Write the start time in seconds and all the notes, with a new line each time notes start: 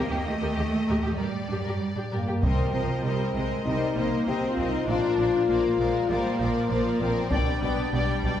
Already playing: A#3 D#5
0.10 D#2 G4
0.15 G4
0.25 D#2 A3 D#4
0.30 G4
0.41 D#2 G4 A#4
0.56 D#2 G4
0.87 D#2 G4 A#4
1.02 D#2 G4
1.06 G4
1.17 G2 G3 A#4 D5
1.22 G4
1.48 G2 D4 G4
1.64 G2 G4 A#4
1.95 G2 D4 G4
2.11 G2 A#3 G4 A#4
2.27 G2 G4
2.42 C2 C3 G3 C4 A#4 C5 D#5, taiko
2.73 C2 C3 F3 A#4 C5 D#5
3.03 C2 C3 G3 A#4 C5 D#5
3.35 C2 C3 G#3 A#4 C5 D#5
3.65 C2 C3 G3 D#4 A#4 C5 D#5
3.96 C2 C3 A#3 A#4 C5 D#5
4.27 C2 C3 C4 G4 A#4 C5 D#5
4.49 F4
4.57 C2 C3 A#4 C5 D#5
4.68 D#4
4.87 A#1 A#2 D4 F4 A#4 C5 D5
5.17 A#1 A#2 A#4 C5 D5
5.48 A#1 A#2 A#3 A#4 C5 D5
5.79 A#1 A#2 G#3 A#4 C5 D5
6.09 A#1 A#2 G3 A#3 A#4 C5 D5
6.40 A#1 A#2 F3 A#4 C5 D5
6.69 A#1 A#2 F3 A#4 C5 D5
7.00 A#1 A#2 C4 A#4 C5 D5
7.30 B1 B2 G3 D4 D5 G5, taiko
7.62 B1 B2 B3 D5 G5
7.92 B1 B2 G3 D5 G5
8.24 B1 B2 D5 G5, taiko